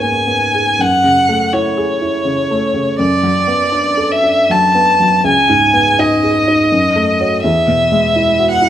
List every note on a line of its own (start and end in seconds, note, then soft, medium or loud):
0.00 0.76 C#2 soft
0.00 0.83 G#2 soft
0.00 0.28 A#3 soft
0.00 0.27 B3 soft
0.00 0.83 C#4 soft
0.00 0.82 G#5 soft
0.27 0.70 B3 soft
0.55 0.80 G#4 soft
0.79 2.95 F#2 soft
0.79 1.55 F#5 medium
1.04 1.44 C#3 soft
1.29 1.68 A3 soft
1.53 1.92 E4 soft
1.53 3.00 C#5 medium
1.77 2.17 G#4 soft
2.02 2.41 E4 soft
2.25 2.65 C#3 soft
2.51 2.90 A3 soft
2.74 2.99 C#3 soft
2.99 5.22 F#2 soft
2.99 4.13 D5 medium
3.23 3.63 F#3 soft
3.48 3.88 B3 soft
3.72 4.14 D4 soft
3.97 4.41 A4 soft
4.12 4.53 E5 medium
4.23 4.66 D4 soft
4.50 4.91 F#3 soft
4.50 5.26 A5 medium
4.75 5.15 B3 soft
5.00 5.25 F#3 soft
5.24 6.67 C#2 soft
5.24 6.01 G#5 medium
5.49 5.89 G#2 soft
5.74 6.14 B3 soft
5.99 6.38 D#4 soft
5.99 7.43 D#5 medium
6.23 6.62 G#4 soft
6.48 6.72 D#4 soft
6.72 7.42 F#2 soft
6.96 7.34 A3 soft
7.20 7.42 F#4 soft
7.20 7.42 C#5 soft
7.44 8.69 E2 soft
7.44 8.49 E5 medium
7.68 8.06 B2 soft
7.92 8.30 G#3 soft
8.16 8.53 E4 soft
8.40 8.69 F#4 soft
8.51 8.69 F#5 medium
8.62 8.69 E4 soft